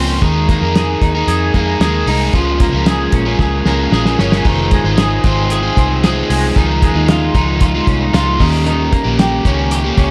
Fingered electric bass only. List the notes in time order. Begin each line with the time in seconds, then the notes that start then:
Already playing: C#2
0.22 D#2
0.61 F2
1.01 D#2
1.27 F2
1.54 F2
1.80 D#2
2.06 C2
2.33 C#2
2.73 C#2
3.12 A#1
3.39 C#2
3.65 C#2
3.91 A#1
4.18 G1
4.45 F1
4.84 G#1
5.24 G#1
5.77 C2
6.30 C2
6.56 C#2
6.95 D#2
7.34 C#2
7.87 C2
8.14 C#2
8.40 D#2
9.05 A#1
9.45 C#2
9.97 C#2